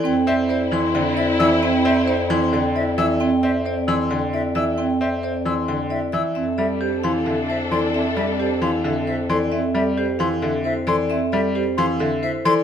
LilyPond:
<<
  \new Staff \with { instrumentName = "Flute" } { \time 7/8 \key f \major \tempo 4 = 133 r8 e''8 r4. e''8 e'''8 | r8 e''8 r4. e''8 e'''8 | r8 e''8 r8 e'''8 r8 e''8 e'''8 | r8 e''8 r8 e'''8 r8 e''8 e'''8 |
r8 e''8 r8 c'''8 r8 e''8 c'''8 | r8 e''8 r8 c'''8 r8 e''8 c'''8 | r8 e''8 r8 c'''8 r8 e''8 c'''8 | r8 e''8 r8 c'''8 r8 e''8 c'''8 | }
  \new Staff \with { instrumentName = "Vibraphone" } { \time 7/8 \key f \major g''8 e''8 d''8 c'''8 g''8 d''8 e''8 | g''8 e''8 d''8 c'''8 g''8 d''8 e''8 | g''8 e''8 d''8 c'''8 g''8 d''8 e''8 | g''8 e''8 d''8 c'''8 g''8 d''8 e''8 |
e''8 d''8 c''8 f''8 e''8 c''8 d''8 | e''8 d''8 c''8 f''8 e''8 c''8 d''8 | e''8 d''8 c''8 f''8 e''8 c''8 d''8 | e''8 d''8 c''8 f''8 e''8 c''8 d''8 | }
  \new Staff \with { instrumentName = "Marimba" } { \time 7/8 \key f \major c'8 d''8 c''8 e'8 d''8 e'8 d''8 | c'8 d''8 c''8 e'8 d''8 e'8 d''8 | c'8 d''8 c''8 e'8 d''8 e'8 d''8 | c'8 d''8 c''8 e'8 d''8 e'8 d''8 |
c'8 a'8 g'8 e'8 a'8 e'8 a'8 | c'8 a'8 g'8 e'8 a'8 e'8 a'8 | c'8 a'8 g'8 e'8 a'8 e'8 a'8 | c'8 a'8 g'8 e'8 a'8 e'8 a'8 | }
  \new Staff \with { instrumentName = "String section" } { \time 7/8 \key f \major <e' c''>2.~ <e' c''>8~ | <e' c''>2. r8 | r2. r8 | r2. r8 |
<d' a'>2.~ <d' a'>8~ | <d' a'>2. r8 | r2. r8 | r2. r8 | }
  \new Staff \with { instrumentName = "Grand piano" } { \clef bass \time 7/8 \key f \major r8 c'8 r8 e8 d8 r8 e8 | r8 c'8 r8 e8 d8 r8 e8 | r8 c'8 r8 e8 d8 r8 e8 | r8 c'8 r8 e8 d8 r8 e8 |
r8 g8 r8 e8 d8 r8 e8 | r8 g8 r8 e8 d8 r8 e8 | r8 g8 r8 e8 d8 r8 e8 | r8 g8 r8 e8 d8 r8 e8 | }
  \new Staff \with { instrumentName = "Bass clarinet" } { \clef bass \time 7/8 \key f \major f,2.~ f,8~ | f,2.~ f,8~ | f,2.~ f,8~ | f,2.~ f,8 |
f,2.~ f,8~ | f,2.~ f,8~ | f,2.~ f,8~ | f,2.~ f,8 | }
>>